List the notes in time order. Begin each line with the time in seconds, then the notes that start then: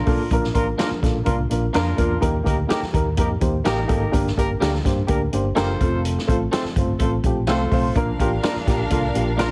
Already playing: D4 F4 A#4
0.06 B1 A#3 D4 F4 A4, kick, open hi-hat
0.31 A#1 A#3 D4 F4 A#4, kick, closed hi-hat
0.44 snare
0.53 A1 A#3 D4 F4 A#4, kick, closed hi-hat
0.77 A#3 D4 F4 A#4, snare, closed hi-hat
0.91 muted fingered electric bass stroke
1.02 A#1 A#3 D4 F4 A4, kick, snare, closed hi-hat
1.25 C2 A#3 D4 F4 A#4, kick, closed hi-hat
1.50 A#1 A#3 D4 F4 A#4, closed hi-hat
1.73 F2 A#3 D4 F4 A#4, snare, closed hi-hat
1.96 E2 A#3 D4 F4 A#4, kick, closed hi-hat
2.21 D#2 A#3 D#4 G4 A#4, kick, closed hi-hat
2.43 D2 A#3 D#4 G4 A#4, kick, closed hi-hat
2.67 A#3 D#4 G4 A4 A#4, snare, closed hi-hat
2.82 muted fingered electric bass stroke, snare
2.93 D#2 A#3 D#4 G4 A#4, kick, closed hi-hat
3.17 F2 A#3 D#4 G4 A#4, kick, closed hi-hat
3.40 D#2 A#3 D#4 G4 C5, kick, closed hi-hat
3.64 A1 A#3 D#4 G4 A#4, snare, closed hi-hat
3.87 G#1 A#3 D#4 G4 A4, kick, closed hi-hat
4.11 G1 A#3 D4 G4 A#4, kick, closed hi-hat
4.27 snare
4.36 G1 A#3 D4 G4 A#4, kick, closed hi-hat
4.60 D2 A#3 D4 G4 A4 A#4, snare, closed hi-hat
4.74 snare
4.84 G2 A#3 D4 G4 C5, kick, snare, closed hi-hat
5.07 D2 A#3 D4 G4 A#4, kick, closed hi-hat
5.32 G1 A#3 D4 G4 C5, closed hi-hat
5.55 F#1 A#3 D4 F4 G4 A4 A#4 C5, snare, closed hi-hat
5.80 F1 A3 C4 F4 A4, kick, closed hi-hat
6.05 closed hi-hat
6.19 snare
6.27 A1 A3 C4 F4 A4 C5, kick, closed hi-hat
6.51 A3 C4 F4 A4 C5, snare, closed hi-hat
6.64 muted fingered electric bass stroke, snare
6.76 G1 A3 C4 F4 C5, kick, closed hi-hat
6.99 A1 A3 C4 F4 A4 C5, kick, closed hi-hat
7.24 A#1 A3 C4 F4 G4, kick, closed hi-hat
7.47 C2 A3 C4 F4 A4 C5, snare, closed hi-hat
7.72 B1 A3 C4 F4 C5, kick, open hi-hat
7.95 A#1 A#3 D4 F4 A#4 F5, kick, closed hi-hat
8.19 A1 A#3 D4 F4 G4 A#4, kick, closed hi-hat
8.43 A#3 D4 F4 A#4, snare, closed hi-hat
8.56 muted fingered electric bass stroke, snare
8.66 A#1 A#3 D4 F4 G4, kick, snare, closed hi-hat
8.89 C2 A#3 D4 F4 A4 A#4, kick, closed hi-hat
9.14 A#1 A#3 D4 F4 G4, closed hi-hat
9.37 A#3 D4 F4 A#4, snare, closed hi-hat